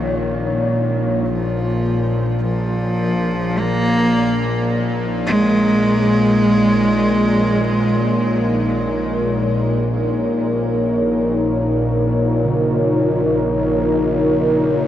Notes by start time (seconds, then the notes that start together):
Already playing: A#1 A#2 D#3 G#3 A#3 D#4 F4 C#5
1.29 A#1 A#2 F3
1.93 A#4
2.43 F3
3.58 A#3
5.06 D#4
5.26 G#3
12.45 C#3